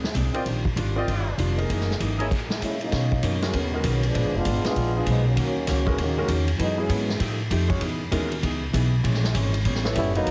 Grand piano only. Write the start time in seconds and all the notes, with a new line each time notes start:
0.34 C4 F4 A#4 C5
0.96 C4 F4 A#4 D5
1.57 A#3 D#4 G#4 A#4
2.19 A#3 D#4 G#4 C#5
3.42 G#3 C#4 F#4 A#4
3.73 G#3 C#4 F#4 A#4
4.65 B3 D4 F4 G#4
4.96 B3 D4 F4 G#4
5.86 G#3 C#4 F#4 A#4
6.17 G#3 C#4 F#4 A#4
6.77 F#3 B3 E4 G#4
7.68 G#3 C#4 F#4 C#5
8.11 G#3 C#4 F#4 A#4
9.85 B3 E4 A4 C#5